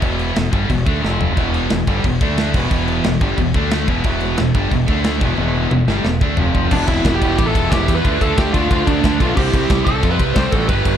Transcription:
0.01 E1 E2 B2 E3, kick, crash
0.19 crash
0.35 E1 E2 B2, snare, crash
0.52 G1 G2 D3 G3, kick, crash
0.69 E1 E2 B2, kick, crash
0.86 D2 D3 A3 D4, kick, crash
1.03 F1 F2 C3 F3, snare
1.21 floor tom
1.36 E1 E2 B2 E3, kick, crash
1.54 crash
1.70 E1 E2 B2, snare, crash
1.87 G1 G2 D3 G3, kick, crash
2.04 E1 E2 B2, kick, crash
2.21 D2 D3 A3 D4, kick, crash
2.37 snare, crash
2.54 E1 E2 B2 E3, kick, crash
2.71 E1 E2 B2 E3, kick, crash
2.88 crash
3.04 E1 E2 B2, snare, crash
3.21 G1 G2 D3 G3, kick, crash
3.38 E1 E2 B2, kick, crash
3.54 D2 D3 A3 D4, kick, crash
3.71 snare, crash
3.88 E1 E2 B2 E3, kick, crash
4.04 E1 E2 B2 E3, kick, crash
4.20 crash
4.37 E1 E2 B2, snare, crash
4.54 G1 G2 D3 G3, kick, crash
4.71 E1 E2 B2, kick, crash
4.88 D2 D3 A3 D4, kick, crash
5.04 snare, crash
5.21 E1 E2 B2 E3, kick, crash
5.38 E1 E2 B2 E3, high tom
5.71 E1 E2 B2, mid tom
5.87 G1 G2 D3 G3, snare
6.04 E1 E2 B2, snare
6.21 D2 D3 A3 D4, kick
6.37 F1 F2 C3 F3, floor tom
6.55 kick
6.71 E1 E2 B2 B3 D4 G4 B4 E5 B5, kick, crash
6.75 E3
6.87 E1 C4 E4, kick, ride
7.05 E1, kick, snare, ride
7.14 E4 G4
7.21 E1 B2 E3, kick, ride
7.25 E2
7.38 A1 E4 G4, kick, ride
7.46 F4 A4
7.55 E1, kick, ride
7.71 E1 E2 B2 E4 G4, kick, snare, ride
7.75 E3
7.88 E2, kick, ride
7.96 F4 B4
8.04 D2 D3 A3 A4 D5 F5 D6, kick, ride
8.08 D4
8.21 D2 F4 A4, kick, ride
8.37 D2 D4 G4, kick, snare, ride
8.53 D2 D3 A3 D4 F4, kick, ride
8.71 D2 D4 F4, kick, ride
8.87 D2 A3 D4, kick, ride
9.03 D2 D3 A3 D4, kick, snare, ride
9.20 B1 D4 F4, kick, ride
9.35 C2 C3 G3 E4 G4 C5 E5 C6, kick, crash
9.40 C4
9.53 C2, kick, ride
9.70 C2, kick, snare, ride
9.85 C2 G3 C4 F4 A4, kick, ride
9.90 C3
10.03 F2, kick, ride
10.11 G4 B4
10.19 C2, kick, ride
10.35 C2 C3 G3 G4 C5, kick, snare, ride
10.39 C4
10.52 A1 F4 A4, kick, ride
10.68 G1 G2 D3 G3 G4 B4 D5 B5, kick, ride
10.85 G1, kick, ride

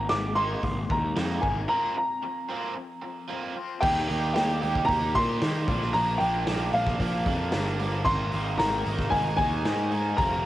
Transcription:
Already playing: A#5
0.09 G#1 G#3 A#3 D6, muted overdriven electric guitar stroke, snare, open hi-hat
0.35 D#3 G#3 A#3 D#4 C6
0.63 G#1 G#3 A#3, muted overdriven electric guitar stroke, kick, open hi-hat
0.90 D#2 G#3 A#3 A#5, muted overdriven electric guitar stroke, kick
1.16 F2 D#3 G#3 A#3 D#4, snare, open hi-hat
1.41 G#1 G#3 A#3 D#4 G#5, muted overdriven electric guitar stroke, kick
1.68 F3 A#3 C4 F4 A#5
1.95 F3 C4 A#5, muted overdriven electric guitar stroke
2.22 F3 C4, muted overdriven electric guitar stroke
2.49 F3 A#3 C4 F4
2.75 F3 C4, muted overdriven electric guitar stroke
3.02 F3 C4, muted overdriven electric guitar stroke
3.29 F3 A#3 C4
3.55 F3 C4 F4, muted overdriven electric guitar stroke
3.80 D#2 D#3 G3 A#3 D#4 G4 G5, kick, crash
4.08 D#2 D#3 G3 A#3 D#4 G4, open hi-hat
4.34 D#2 D#3 G3 A#3 D#4 G4 G5, snare, open hi-hat
4.62 D#2 D#3 G3 A#3 D#4 G4, open hi-hat
4.75 kick
4.85 D#2 D#3 A#5, kick, open hi-hat
4.89 G3 A#3 D#4 G4
5.15 A#2 D#3 G3 A#3 D#4 G4 C6, kick, open hi-hat
5.40 D#3 G3 A#3 D#4 G4, snare, open hi-hat
5.66 A#1 A#2 D3 F3 A#3 D4 A#4, kick, open hi-hat
5.82 snare
5.93 A#1 A#2 D3 F3 A#3 D4 A#4 A#5, open hi-hat
6.18 A#1 A#2 D3 F3 A#3 D4 G5, open hi-hat
6.22 A#4
6.47 A#1 A#2 D3 F3 A#3 D4 A#4, snare, open hi-hat
6.72 A#1 A#2 D3 F3 A#3 D4 A#4 F5, open hi-hat
6.86 kick, snare
7.00 A#1 A#2 D3 F3 A#3 D4 A#4, kick, open hi-hat
7.25 F2 A#2 D3 F3 A#3 D4 A#4, kick, open hi-hat
7.51 G1 A#2 D3 F3 A#3 D4 A#4, snare, open hi-hat
7.79 A#2 D3 F3 A#3 D4 A#4, open hi-hat
8.05 G#1 D#3 G#3 A#3 D#4 A#4 C6, kick, crash
8.32 G#1 D#3 G#3 A#3 D#4 A#4, open hi-hat
8.58 G#1 D#3 G#3 A#3 D#4 A#4 A#5, snare, open hi-hat
8.85 G#1 D#3 G#3 A#3 D#4 A#4, open hi-hat
8.99 kick, snare
9.10 G#1 D#3 G#3 A#3 D#4 A#4 G#5, kick, open hi-hat
9.37 D#2 D#3 G#3 A#3 D#4 A#4 G#5, kick, open hi-hat
9.64 G#2 D#3 G#3 A#3 D#4 A#4, snare, open hi-hat
9.91 D#3 G#3 A#3 D#4 A#4, open hi-hat
10.17 F1 F3 A#3 C4 F4 A#4 A#5, kick, open hi-hat

